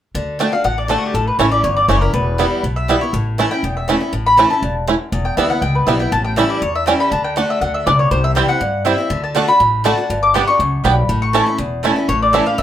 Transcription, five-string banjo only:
0.40 0.46 A3 medium
0.40 0.43 D4 medium
0.90 0.96 A3 medium
0.90 0.93 D4 medium
1.40 1.45 A3 medium
1.40 1.45 C#4 medium
1.40 1.46 E4 medium
1.89 1.95 A3 medium
1.89 1.95 C#4 medium
1.89 1.95 E4 medium
2.39 2.45 G3 medium
2.39 2.45 B3 medium
2.39 2.45 E4 medium
2.89 2.95 G3 medium
2.89 2.95 B3 medium
2.89 2.95 E4 medium
3.39 3.44 A3 medium
3.39 3.45 C#4 medium
3.39 3.45 E4 medium
3.89 3.94 A3 medium
3.89 3.94 C#4 medium
3.89 3.95 E4 medium
4.39 4.44 A3 medium
4.39 4.44 C#4 medium
4.39 4.44 E4 medium
4.88 4.94 A3 medium
4.88 4.94 C#4 medium
4.88 4.94 E4 medium
5.38 5.44 G3 medium
5.38 5.44 B3 medium
5.38 5.44 E4 medium
5.88 5.93 G3 medium
5.88 5.93 B3 medium
5.88 5.93 E4 medium
6.38 6.43 G3 medium
6.38 6.43 C#4 medium
6.38 6.43 E4 medium
6.87 6.93 G3 medium
6.87 6.93 C#4 medium
6.87 6.93 E4 medium
7.37 7.42 A3 medium
7.37 7.40 D4 medium
7.87 7.92 A3 medium
7.87 7.89 D4 medium
8.36 8.42 G3 medium
8.36 8.42 C4 medium
8.36 8.42 E4 medium
8.86 8.92 G3 medium
8.86 8.92 C4 medium
8.86 8.92 E4 medium
9.36 9.41 A3 medium
9.36 9.38 D4 medium
9.86 9.91 A3 medium
9.86 9.88 D4 medium
10.35 10.41 G3 medium
10.35 10.41 B3 medium
10.35 10.41 D4 medium
10.85 10.91 G3 medium
10.85 10.91 B3 medium
10.85 10.91 D4 medium
11.35 11.40 A3 medium
11.35 11.40 C#4 medium
11.35 11.40 E4 medium
11.85 11.90 A3 medium
11.85 11.90 C#4 medium
11.85 11.90 E4 medium
12.34 12.40 A3 medium
12.34 12.40 C#4 medium
12.34 12.40 E4 medium

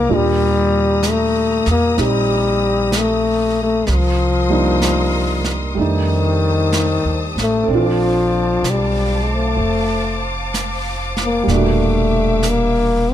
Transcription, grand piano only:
0.00 0.11 G#3 soft
0.00 0.11 C4 soft
0.00 0.09 D4 soft
0.00 0.11 F4 soft
0.09 3.87 A#2 soft
0.09 3.87 G3 soft
0.09 3.87 D4 soft
0.09 3.88 F4 soft
1.97 3.86 C4 soft
1.97 3.87 D#4 soft
1.97 3.88 G4 soft
4.49 5.73 G3 soft
4.49 5.77 A#3 soft
4.49 5.77 D4 soft
4.49 5.77 D#4 soft
5.75 7.67 G3 soft
5.75 7.68 A3 soft
5.75 7.69 D4 soft
5.80 7.70 D#4 soft
7.64 11.45 A4 soft
7.68 11.47 C4 soft
7.68 11.49 D4 soft
7.75 11.51 F4 soft
11.43 13.14 A#2 soft
11.43 13.14 G3 soft
11.51 13.14 D4 soft
11.51 13.14 F#4 soft

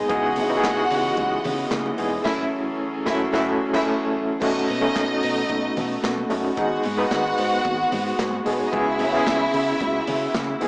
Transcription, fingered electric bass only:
0.10 0.39 C#2 loud
0.37 0.56 C#3 loud
0.64 0.83 C#2 loud
0.91 1.10 C#3 loud
1.18 1.37 C#2 loud
1.45 1.64 C#3 loud
1.72 1.91 C#3 loud
1.99 2.18 E1 loud
2.26 2.44 F#1 loud
3.07 3.25 F#1 loud
3.34 3.52 F#1 loud
3.75 3.93 F#1 medium
4.42 4.61 B1 loud
4.70 4.88 B2 medium
4.96 5.15 B1 loud
5.24 5.42 B2 medium
5.50 5.69 B1 loud
5.77 5.96 B2 loud
6.04 6.23 B2 loud
6.31 6.50 F#1 loud
6.58 6.77 G#1 loud
6.86 7.04 G#2 loud
7.12 7.31 G#1 loud
7.39 7.58 G#2 loud
7.66 7.85 G#1 loud
7.93 8.11 G#2 loud
8.19 8.38 G#2 loud
8.47 8.65 B1 medium
8.73 9.01 C#2 loud
9.00 9.19 C#3 loud
9.27 9.46 C#2 loud
9.54 9.73 C#3 loud
9.81 10.00 C#2 loud
10.07 10.27 C#3 loud
10.35 10.54 C#3 loud
10.61 10.68 E1 loud

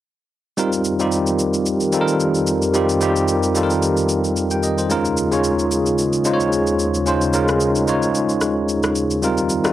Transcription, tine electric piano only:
0.57 0.91 G3 medium
0.57 0.91 C4 medium
0.57 0.91 D#4 medium
0.57 0.91 F4 medium
0.57 0.92 A#4 medium
0.99 1.75 G3 medium
0.99 1.75 C4 medium
0.99 1.75 D#4 medium
0.99 1.75 F4 medium
0.99 1.76 G4 medium
1.92 2.59 G3 medium
1.92 2.59 C4 medium
1.92 2.59 D#4 medium
1.92 2.59 F4 medium
1.92 2.01 A4 medium
2.01 2.63 A#4 loud
2.74 2.96 G3 medium
2.74 2.96 C4 medium
2.74 2.96 D#4 medium
2.74 2.97 F4 medium
2.74 2.97 G4 medium
3.01 3.45 G3 medium
3.01 3.45 C4 medium
3.01 3.46 D#4 medium
3.01 3.46 F4 medium
3.01 3.46 G4 medium
3.55 4.42 G3 medium
3.55 4.42 C4 medium
3.55 4.42 D#4 medium
3.55 4.43 F4 medium
3.55 3.63 A4 medium
3.63 4.46 A#4 medium
4.51 4.63 G5 medium
4.64 4.78 D#5 medium
4.78 5.04 C5 medium
4.90 5.23 G#3 medium
4.90 5.23 C#4 medium
4.90 5.23 D#4 medium
4.90 5.24 F4 medium
4.90 5.24 A#4 medium
5.31 6.07 G#3 medium
5.31 6.07 C#4 medium
5.31 6.08 D#4 medium
5.31 6.08 F4 medium
5.31 6.08 C#5 medium
6.25 6.91 G#3 medium
6.25 6.91 C#4 medium
6.25 6.92 D#4 medium
6.25 6.92 F4 medium
6.25 6.33 C5 medium
6.33 6.95 C#5 medium
7.06 7.28 G#3 medium
7.06 7.29 C#4 medium
7.06 7.29 D#4 medium
7.06 7.29 F4 medium
7.06 7.30 C5 medium
7.33 7.78 G#3 medium
7.33 7.78 C#4 medium
7.33 7.78 D#4 medium
7.33 7.78 F4 medium
7.33 7.79 A#4 medium
7.87 8.74 G#3 medium
7.87 8.75 C#4 medium
7.87 8.75 D#4 medium
7.87 8.75 F4 medium
7.87 8.75 C#5 medium
9.22 9.55 G3 medium
9.22 9.56 C4 medium
9.22 9.56 D#4 medium
9.22 9.56 F4 medium
9.22 9.56 A#4 medium
9.64 9.73 G3 medium
9.64 9.73 C4 medium
9.64 9.73 D#4 medium
9.64 9.73 F4 medium
9.64 9.71 F#4 medium

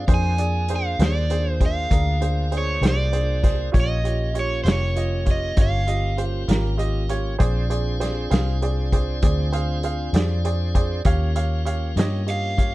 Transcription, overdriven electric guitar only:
0.00 0.13 F5 medium
0.14 0.74 G#5 loud
0.76 1.04 F5 medium
1.06 1.52 D5 medium
1.52 1.66 C5 medium
1.66 2.57 F5 medium
2.58 2.86 C#5 medium
2.88 3.79 D5 medium
3.80 4.40 D#5 medium
4.40 4.62 C#5 medium
4.64 4.68 C5 medium
4.72 5.31 C#5 medium
5.31 5.57 D#5 medium
5.62 6.24 F5 medium
12.30 12.75 F5 medium

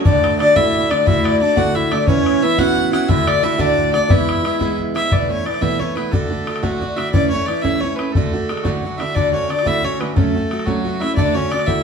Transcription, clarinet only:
0.04 0.37 D4 medium
0.40 0.55 D4 medium
0.56 0.92 E4 medium
0.91 1.08 D4 medium
1.07 1.44 E4 loud
1.42 1.57 D4 medium
1.58 1.78 F#4 medium
1.76 1.94 E4 medium
1.93 2.11 D4 medium
2.09 2.46 C#4 loud
2.44 2.59 E4 medium
2.60 2.91 F#4 medium
2.94 3.12 F#4 medium
3.10 3.28 E4 loud
3.44 3.59 E4 medium
3.60 3.92 D4 medium
3.95 4.12 D4 medium
4.10 4.79 E4 loud
9.16 9.33 D4 medium
9.34 9.52 C#4 medium
9.50 9.64 D4 medium
9.63 9.69 F#4 soft
9.67 9.84 E4 medium
9.85 10.19 C#4 medium
10.18 10.66 A3 medium
10.67 11.03 F#3 medium
11.01 11.19 E4 medium
11.18 11.38 D4 loud
11.36 11.67 C#4 medium
11.68 11.83 E4 medium

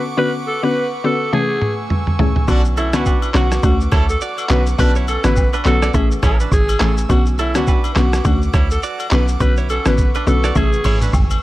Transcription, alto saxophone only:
0.18 0.32 B4 loud
0.47 0.61 A4 medium
0.64 0.88 B4 medium
1.05 1.29 A4 medium
1.34 1.76 G#4 loud
2.49 2.63 F#4 loud
2.78 2.92 E4 medium
2.95 3.19 F#4 medium
3.36 3.60 F#4 medium
3.64 3.78 F#4 medium
4.10 4.20 A4 medium
4.51 4.65 B4 medium
4.80 4.93 B4 loud
5.09 5.22 A4 medium
5.25 5.49 B4 medium
5.66 5.90 A4 loud
6.53 6.95 G#4 medium
7.11 7.24 F#4 loud
7.39 7.53 E4 medium
7.56 7.80 F#4 medium
7.97 8.21 F#4 medium
8.26 8.40 F#4 medium
8.72 8.82 A4 medium
9.13 9.26 B4 medium
9.41 9.55 B4 loud
9.70 9.84 A4 medium
9.87 10.11 B4 medium
10.28 10.52 A4 medium
10.57 10.99 G#4 loud

